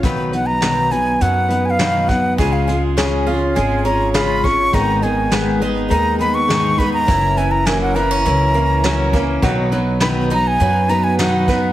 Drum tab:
HH |xxxxxxxx|xxxxxxxx|xxxxxxxx|xxxxxxxx|
SD |--o---o-|--o---o-|--o---o-|--o---o-|
BD |o------o|o------o|o------o|o------o|

HH |xxxxxxxx|
SD |--o---o-|
BD |o------o|